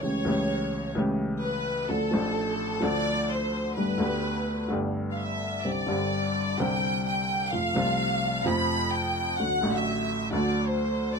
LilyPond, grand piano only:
\new Staff \with { instrumentName = "Grand piano" } { \clef bass \time 4/4 \key d \dorian \tempo 4 = 128 <cis, cis e a cis' g'>8 <cis, cis e a cis' g'>4. <cis, cis e a cis' g'>2 | <d, d f a d' a'>8 <a,, a, f a d' a'>4. <d, d f a d' a'>2 | <g,, g, d a b g'>8 <d, d a b g'>4. <g,, g, d a b g'>2 | <c, c d g c' g'>8 <g,, g, d g c' g'>4. <c, c d g c' g'>2 |
<f, c f a f'>8 <c, c f a f'>4. <f, c f a f'>2 | <d, d fis a fis'>8 <a,, a, d fis a fis'>4. <d, d fis a fis'>2 | }